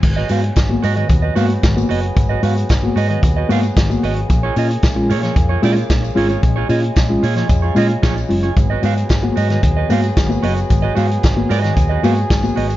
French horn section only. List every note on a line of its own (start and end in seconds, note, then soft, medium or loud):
0.04 4.26 F#3 medium
0.04 4.26 B3 medium
0.04 8.53 G#4 medium
4.29 8.52 C#3 medium
4.29 6.41 A#3 medium
6.43 8.55 G#3 medium
8.56 12.77 F#3 medium
8.56 12.77 B3 medium
8.56 12.77 G#4 medium